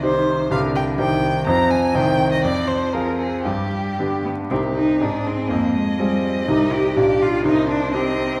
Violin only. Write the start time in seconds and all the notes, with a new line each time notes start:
0.03 C5
0.51 F5
0.76 G5
0.99 G5
1.47 A#5
1.70 G#5
1.95 G5
2.32 D#5
2.44 D5
2.68 C5
2.93 A#4
3.19 G#4
3.44 G4
4.49 G4
5.00 G#4
5.50 D#5
6.97 D5
7.45 C5
7.92 D#5